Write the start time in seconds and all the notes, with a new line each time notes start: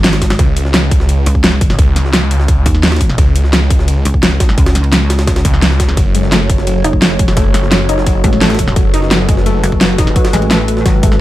Already playing: G#1
0.04 snare, closed hi-hat, ride
0.13 snare, ride
0.22 kick, snare, closed hi-hat, ride
0.30 snare, ride
0.39 C#2, kick, closed hi-hat, ride
0.57 closed hi-hat, ride
0.65 snare
0.74 snare, closed hi-hat, ride
0.91 kick, closed hi-hat, ride
1.00 snare
1.09 closed hi-hat, ride
1.26 C#2, closed hi-hat, ride
1.35 kick
1.44 snare, closed hi-hat, ride
1.61 kick, closed hi-hat, ride
1.70 snare
1.79 C#2, kick, closed hi-hat, ride
1.96 snare, closed hi-hat, ride
2.05 snare
2.13 snare, closed hi-hat, ride
2.31 closed hi-hat, ride
2.40 snare
2.48 kick, closed hi-hat, ride
2.66 D#2, kick, closed hi-hat, ride
2.75 snare
2.83 snare, closed hi-hat, ride
2.88 snare, ride
2.92 snare, ride
2.96 snare, ride
3.01 kick, snare, closed hi-hat, ride
3.09 snare
3.18 C#2, kick, closed hi-hat, ride
3.36 closed hi-hat, ride
3.44 snare
3.53 snare, closed hi-hat, ride
3.70 kick, closed hi-hat, ride
3.79 snare
3.88 closed hi-hat, ride
4.05 C#2, closed hi-hat, ride
4.14 kick
4.23 snare, closed hi-hat, ride
4.40 kick, snare, closed hi-hat, ride
4.49 snare
4.58 C#2, kick, closed hi-hat, ride
4.66 snare, ride
4.75 snare, closed hi-hat
4.84 ride
4.93 snare, closed hi-hat, ride
5.10 snare, closed hi-hat, ride
5.19 snare, ride
5.27 kick, snare, closed hi-hat, ride
5.36 snare, ride
5.45 C#2, kick, closed hi-hat, ride
5.54 snare
5.62 snare, closed hi-hat, ride
5.71 snare
5.80 kick, snare, closed hi-hat, ride
5.89 snare
5.97 F#1 F#3 F#4 A4 C#5, kick, closed hi-hat, ride
6.15 G#3, closed hi-hat, ride
6.23 snare
6.32 A3, snare, closed hi-hat, ride
6.50 kick, closed hi-hat, ride
6.58 snare
6.67 F#3, closed hi-hat, ride
6.84 F#1 D#4, closed hi-hat, ride
6.93 kick
7.02 F#3, snare, closed hi-hat, ride
7.19 G#3, kick, closed hi-hat, ride
7.28 snare
7.37 F#1 A3, kick, closed hi-hat, ride
7.54 snare, closed hi-hat, ride
7.63 snare
7.72 F#3, snare, closed hi-hat, ride
7.89 D#4, closed hi-hat, ride
7.98 snare
8.07 F#3, kick, closed hi-hat, ride
8.24 A1 G#3, kick, closed hi-hat, ride
8.33 snare
8.41 A3, snare, closed hi-hat, ride
8.46 snare, ride
8.50 snare, ride
8.54 snare, ride
8.59 kick, snare, closed hi-hat, ride
8.68 snare
8.76 F#1 F#3 B4, kick, closed hi-hat, ride
8.94 D#4, closed hi-hat, ride
9.02 snare
9.11 F#3, snare, closed hi-hat, ride
9.29 G#3, kick, closed hi-hat, ride
9.37 snare
9.46 A3, closed hi-hat, ride
9.63 F#1, closed hi-hat, ride
9.72 kick
9.81 F#3, snare, closed hi-hat, ride
9.98 D#4, kick, snare, closed hi-hat, ride
10.07 snare
10.16 F#3, kick, closed hi-hat, ride
10.25 snare, ride
10.33 A1 G#3, snare, closed hi-hat
10.42 ride
10.51 A3, snare, closed hi-hat, ride
10.68 closed hi-hat, ride
10.77 snare
10.86 G#1 F#3, kick, snare, closed hi-hat, ride
11.03 A3, kick, closed hi-hat, ride
11.12 snare